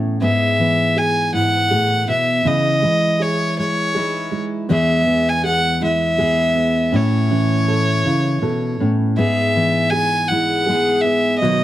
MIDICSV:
0, 0, Header, 1, 4, 480
1, 0, Start_track
1, 0, Key_signature, 4, "major"
1, 0, Tempo, 746269
1, 147, Time_signature, 6, 3, 24, 8
1, 7486, End_track
2, 0, Start_track
2, 0, Title_t, "Violin"
2, 0, Program_c, 0, 40
2, 146, Note_on_c, 0, 76, 83
2, 630, Note_on_c, 0, 80, 87
2, 640, Note_off_c, 0, 76, 0
2, 866, Note_off_c, 0, 80, 0
2, 870, Note_on_c, 0, 78, 83
2, 1322, Note_off_c, 0, 78, 0
2, 1352, Note_on_c, 0, 76, 78
2, 1592, Note_on_c, 0, 75, 82
2, 1602, Note_off_c, 0, 76, 0
2, 2075, Note_on_c, 0, 73, 81
2, 2084, Note_off_c, 0, 75, 0
2, 2307, Note_off_c, 0, 73, 0
2, 2311, Note_on_c, 0, 73, 76
2, 2823, Note_off_c, 0, 73, 0
2, 3033, Note_on_c, 0, 76, 84
2, 3403, Note_on_c, 0, 80, 80
2, 3413, Note_off_c, 0, 76, 0
2, 3506, Note_off_c, 0, 80, 0
2, 3510, Note_on_c, 0, 78, 87
2, 3732, Note_off_c, 0, 78, 0
2, 3760, Note_on_c, 0, 76, 75
2, 4478, Note_on_c, 0, 73, 73
2, 4487, Note_off_c, 0, 76, 0
2, 5672, Note_off_c, 0, 73, 0
2, 5905, Note_on_c, 0, 76, 82
2, 6371, Note_on_c, 0, 80, 98
2, 6380, Note_off_c, 0, 76, 0
2, 6610, Note_on_c, 0, 78, 82
2, 6620, Note_off_c, 0, 80, 0
2, 7083, Note_on_c, 0, 76, 77
2, 7093, Note_off_c, 0, 78, 0
2, 7323, Note_off_c, 0, 76, 0
2, 7327, Note_on_c, 0, 75, 84
2, 7486, Note_off_c, 0, 75, 0
2, 7486, End_track
3, 0, Start_track
3, 0, Title_t, "Felt piano"
3, 0, Program_c, 1, 0
3, 0, Note_on_c, 1, 61, 41
3, 0, Note_on_c, 1, 64, 46
3, 0, Note_on_c, 1, 69, 50
3, 139, Note_on_c, 1, 59, 68
3, 144, Note_off_c, 1, 61, 0
3, 193, Note_off_c, 1, 69, 0
3, 195, Note_off_c, 1, 64, 0
3, 377, Note_off_c, 1, 59, 0
3, 387, Note_on_c, 1, 59, 57
3, 619, Note_on_c, 1, 68, 51
3, 857, Note_on_c, 1, 64, 44
3, 1088, Note_off_c, 1, 68, 0
3, 1097, Note_on_c, 1, 68, 51
3, 1324, Note_off_c, 1, 59, 0
3, 1334, Note_on_c, 1, 59, 44
3, 1572, Note_on_c, 1, 52, 62
3, 1628, Note_off_c, 1, 59, 0
3, 1630, Note_off_c, 1, 64, 0
3, 1630, Note_off_c, 1, 68, 0
3, 1813, Note_on_c, 1, 56, 51
3, 2055, Note_on_c, 1, 68, 46
3, 2528, Note_off_c, 1, 68, 0
3, 2537, Note_on_c, 1, 68, 55
3, 2765, Note_off_c, 1, 56, 0
3, 2774, Note_on_c, 1, 56, 46
3, 3013, Note_on_c, 1, 59, 61
3, 3020, Note_off_c, 1, 52, 0
3, 3021, Note_off_c, 1, 56, 0
3, 3070, Note_off_c, 1, 68, 0
3, 3246, Note_off_c, 1, 59, 0
3, 3255, Note_on_c, 1, 59, 48
3, 3495, Note_on_c, 1, 68, 52
3, 3729, Note_on_c, 1, 64, 46
3, 3966, Note_off_c, 1, 68, 0
3, 3976, Note_on_c, 1, 68, 54
3, 4203, Note_off_c, 1, 59, 0
3, 4213, Note_on_c, 1, 59, 48
3, 4450, Note_on_c, 1, 61, 69
3, 4460, Note_off_c, 1, 59, 0
3, 4506, Note_off_c, 1, 64, 0
3, 4509, Note_off_c, 1, 68, 0
3, 4689, Note_off_c, 1, 61, 0
3, 4699, Note_on_c, 1, 61, 51
3, 4940, Note_on_c, 1, 69, 53
3, 5177, Note_on_c, 1, 64, 47
3, 5408, Note_off_c, 1, 69, 0
3, 5418, Note_on_c, 1, 69, 54
3, 5653, Note_off_c, 1, 61, 0
3, 5663, Note_on_c, 1, 61, 45
3, 5903, Note_on_c, 1, 59, 70
3, 5905, Note_off_c, 1, 61, 0
3, 5950, Note_off_c, 1, 64, 0
3, 5950, Note_off_c, 1, 69, 0
3, 6131, Note_off_c, 1, 59, 0
3, 6141, Note_on_c, 1, 59, 56
3, 6380, Note_on_c, 1, 68, 56
3, 6623, Note_on_c, 1, 64, 50
3, 6847, Note_off_c, 1, 68, 0
3, 6857, Note_on_c, 1, 68, 52
3, 7091, Note_off_c, 1, 59, 0
3, 7101, Note_on_c, 1, 59, 47
3, 7344, Note_on_c, 1, 54, 69
3, 7389, Note_off_c, 1, 68, 0
3, 7391, Note_off_c, 1, 59, 0
3, 7392, Note_off_c, 1, 64, 0
3, 7486, Note_off_c, 1, 54, 0
3, 7486, End_track
4, 0, Start_track
4, 0, Title_t, "Steel-string acoustic guitar"
4, 0, Program_c, 2, 25
4, 0, Note_on_c, 2, 45, 50
4, 0, Note_on_c, 2, 52, 51
4, 0, Note_on_c, 2, 64, 56
4, 139, Note_on_c, 2, 44, 65
4, 140, Note_off_c, 2, 64, 0
4, 143, Note_off_c, 2, 45, 0
4, 143, Note_on_c, 2, 68, 60
4, 379, Note_off_c, 2, 52, 0
4, 381, Note_on_c, 2, 52, 47
4, 851, Note_off_c, 2, 44, 0
4, 859, Note_on_c, 2, 44, 53
4, 1100, Note_on_c, 2, 45, 49
4, 1103, Note_off_c, 2, 44, 0
4, 1339, Note_off_c, 2, 45, 0
4, 1341, Note_on_c, 2, 47, 52
4, 1575, Note_off_c, 2, 47, 0
4, 1578, Note_on_c, 2, 49, 69
4, 1584, Note_off_c, 2, 68, 0
4, 1587, Note_on_c, 2, 64, 53
4, 1822, Note_off_c, 2, 49, 0
4, 1823, Note_off_c, 2, 52, 0
4, 1825, Note_on_c, 2, 52, 52
4, 2308, Note_on_c, 2, 56, 47
4, 2538, Note_off_c, 2, 56, 0
4, 2545, Note_on_c, 2, 56, 45
4, 2552, Note_off_c, 2, 64, 0
4, 2552, Note_on_c, 2, 63, 51
4, 2555, Note_on_c, 2, 64, 54
4, 2997, Note_off_c, 2, 56, 0
4, 3000, Note_off_c, 2, 63, 0
4, 3017, Note_on_c, 2, 40, 59
4, 3018, Note_off_c, 2, 52, 0
4, 3021, Note_on_c, 2, 52, 53
4, 3026, Note_on_c, 2, 56, 52
4, 3029, Note_on_c, 2, 59, 55
4, 3031, Note_off_c, 2, 64, 0
4, 3034, Note_on_c, 2, 68, 64
4, 3256, Note_off_c, 2, 52, 0
4, 3258, Note_on_c, 2, 52, 49
4, 3735, Note_off_c, 2, 56, 0
4, 3743, Note_on_c, 2, 56, 55
4, 3970, Note_off_c, 2, 56, 0
4, 3975, Note_off_c, 2, 59, 0
4, 3978, Note_on_c, 2, 56, 51
4, 3982, Note_off_c, 2, 68, 0
4, 3982, Note_on_c, 2, 59, 48
4, 3990, Note_on_c, 2, 68, 51
4, 4434, Note_off_c, 2, 56, 0
4, 4440, Note_off_c, 2, 68, 0
4, 4454, Note_on_c, 2, 45, 63
4, 4462, Note_off_c, 2, 40, 0
4, 4462, Note_on_c, 2, 64, 59
4, 4465, Note_off_c, 2, 59, 0
4, 4696, Note_off_c, 2, 52, 0
4, 4699, Note_on_c, 2, 52, 44
4, 5181, Note_off_c, 2, 45, 0
4, 5183, Note_on_c, 2, 49, 53
4, 5411, Note_off_c, 2, 49, 0
4, 5413, Note_on_c, 2, 47, 54
4, 5660, Note_off_c, 2, 47, 0
4, 5662, Note_on_c, 2, 45, 56
4, 5874, Note_off_c, 2, 52, 0
4, 5901, Note_on_c, 2, 44, 59
4, 5904, Note_off_c, 2, 64, 0
4, 5905, Note_off_c, 2, 45, 0
4, 5908, Note_on_c, 2, 68, 67
4, 6151, Note_on_c, 2, 52, 53
4, 6633, Note_on_c, 2, 56, 49
4, 6867, Note_off_c, 2, 56, 0
4, 6867, Note_off_c, 2, 68, 0
4, 6874, Note_on_c, 2, 56, 47
4, 6878, Note_on_c, 2, 59, 46
4, 6881, Note_on_c, 2, 68, 56
4, 7314, Note_off_c, 2, 44, 0
4, 7319, Note_off_c, 2, 52, 0
4, 7321, Note_off_c, 2, 56, 0
4, 7324, Note_off_c, 2, 68, 0
4, 7346, Note_off_c, 2, 59, 0
4, 7346, Note_on_c, 2, 47, 70
4, 7350, Note_on_c, 2, 51, 53
4, 7354, Note_on_c, 2, 59, 57
4, 7362, Note_on_c, 2, 66, 64
4, 7486, Note_off_c, 2, 47, 0
4, 7486, Note_off_c, 2, 51, 0
4, 7486, Note_off_c, 2, 59, 0
4, 7486, Note_off_c, 2, 66, 0
4, 7486, End_track
0, 0, End_of_file